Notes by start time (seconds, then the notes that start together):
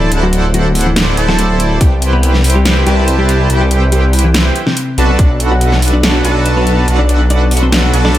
0.12 D1 E4 A4 C5 D5 F#5, closed hi-hat
0.23 F#3 F#4
0.33 closed hi-hat
0.54 F#3 F#4, closed hi-hat
0.75 open hi-hat
0.81 closed hi-hat
0.86 E3 E4
0.96 snare, closed hi-hat
1.17 D1 E4 A4 C5 D5 A5, closed hi-hat
1.28 F#3 F#4, snare
1.39 closed hi-hat
1.60 closed hi-hat
1.81 C2 G3 E4 G4 B4 C5 G5, kick, closed hi-hat
2.02 closed hi-hat
2.13 B3 B4
2.23 closed hi-hat
2.34 snare
2.44 open hi-hat
2.50 closed hi-hat
2.55 G3 G4
2.65 snare, closed hi-hat
2.86 C2 G3 E4 G4 B4 C5 A5, closed hi-hat
3.08 closed hi-hat
3.19 G3 G4
3.29 closed hi-hat
3.50 C2 E4 G4 B4 C5 G5, closed hi-hat
3.61 G3 G4
3.71 closed hi-hat
3.92 G3 G4, closed hi-hat
4.13 open hi-hat
4.19 closed hi-hat
4.24 E3 E4
4.34 snare, closed hi-hat
4.56 closed hi-hat
4.67 C3 C4, snare
4.77 closed hi-hat
4.98 B1 D4 F#4 A4 B4 A5, closed hi-hat
5.19 B1 D4 F#4 A4 B4 D5 F#5, kick, closed hi-hat
5.40 closed hi-hat
5.51 F#4 F#5
5.61 closed hi-hat
5.72 snare
5.82 open hi-hat
5.88 closed hi-hat
5.93 D4 D5
6.03 snare, closed hi-hat
6.24 B1 B3 D4 F#4 A4 B4 A5, closed hi-hat
6.46 closed hi-hat
6.57 B3 B4
6.67 closed hi-hat
6.88 B1 D4 F#4 A4 B4 F#5, closed hi-hat
6.99 D4 D5
7.09 closed hi-hat
7.30 D4 D5, closed hi-hat
7.51 open hi-hat
7.57 closed hi-hat
7.63 C4 C5
7.72 snare, closed hi-hat
7.93 B1 D4 F#4 A4 B4 A5, closed hi-hat
8.05 D4 D5, snare
8.15 closed hi-hat